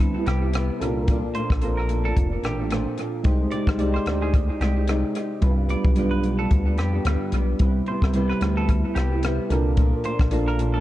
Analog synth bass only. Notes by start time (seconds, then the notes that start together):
Already playing: D2
0.27 C2
0.81 C2
1.50 A#1
2.16 F1
2.43 A1
3.25 C2
3.67 C2
4.06 D2
4.61 C2
5.42 C2
5.84 B1
6.51 D2
6.78 F2
7.05 D2
7.33 B1
7.60 C2
8.02 C2
8.41 D2
8.96 C2
9.50 C2
10.19 A#1